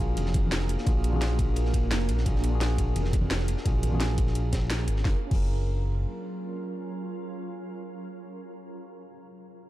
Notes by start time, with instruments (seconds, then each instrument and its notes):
Already playing: analog synth bass A#1, ambient pad A#3 D4 G#4 A#4, tine electric piano D4 F4 F#4 G#4
0.17 analog synth bass F1, closed hi-hat, ride, high conga
0.26 snare
0.34 kick, closed hi-hat, ride, high conga
0.44 high conga
0.51 snare, closed hi-hat, ride
0.60 snare
0.69 closed hi-hat, ride
0.78 snare
0.85 analog synth bass A#1, tine electric piano D4 F4 F#4 G#4, kick, closed hi-hat, ride
1.04 closed hi-hat, ride
1.10 analog synth bass A#1, tine electric piano D4 F4 F#4, high conga
1.16 tine electric piano G#4
1.21 snare, closed hi-hat, ride
1.30 ride
1.39 kick, closed hi-hat, ride
1.56 closed hi-hat, ride
1.65 snare
1.74 kick, closed hi-hat, ride
1.91 analog synth bass F1, snare, closed hi-hat, ride
2.09 analog synth bass A#1, closed hi-hat, ride
2.18 snare
2.25 analog synth bass A#1, tine electric piano D4 F4 F#4 G#4, kick, closed hi-hat, ride
2.36 snare
2.44 closed hi-hat, ride
2.49 tine electric piano D4 F4 F#4
2.55 tine electric piano G#4
2.61 snare, closed hi-hat, ride
2.71 ride
2.78 kick, closed hi-hat, ride
2.96 analog synth bass F1, closed hi-hat, ride, high conga
3.04 snare
3.12 kick, closed hi-hat, ride, high conga
3.21 high conga
3.31 snare, closed hi-hat, ride
3.39 snare
3.48 closed hi-hat, ride
3.57 snare
3.64 analog synth bass A#1, tine electric piano D4 F4 F#4 G#4, kick, closed hi-hat, ride
3.83 closed hi-hat, ride, high conga
3.89 analog synth bass A#1, tine electric piano D4 F4, high conga
3.93 tine electric piano F#4 G#4
4.00 snare, closed hi-hat, ride
4.10 ride
4.18 kick, closed hi-hat, ride
4.27 snare
4.35 closed hi-hat, ride
4.53 kick, snare, closed hi-hat, ride
4.62 ride
4.70 snare, closed hi-hat, ride
4.79 snare
4.87 analog synth bass G#1, closed hi-hat, ride
4.96 snare
5.01 tine electric piano C#4 F4
5.05 analog synth bass F#1, ambient pad F#3 C#4 F4 A#4, tine electric piano G#4, kick, snare
5.09 tine electric piano A#4
5.27 tine electric piano C#4 F4
5.31 analog synth bass F#1, tine electric piano G#4, kick, crash
5.36 tine electric piano A#4